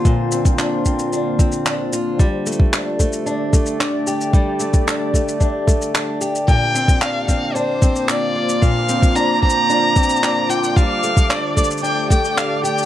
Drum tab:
SH |x---x-x-x---x-x-x---x-x-x---x---|x---xx--x---x-x-x---x-x-x---x-x-|x---x-x-x---x-x-x---x-x-x---x-x-|x---x-x-x---x---x---x-x-x-----x-|
CP |--------x---------------x-------|--------x---------------x-------|--------x---------------x-------|--------x---------------x-------|
BD |o-----o-----o-------o-----------|o-----o-----o-------o-----------|o-----o-----o---o---o-----------|o-----o-----o-------o-----------|

SH |x---x-x-x----x--x---xxxxx---x-x-|x---x-x-x---xxxxx---x-x-x---x-x-|
CP |------------------------x-------|--------x---------------x-------|
BD |o-----o-----o-------o-----------|o-----o-----o-------o-----------|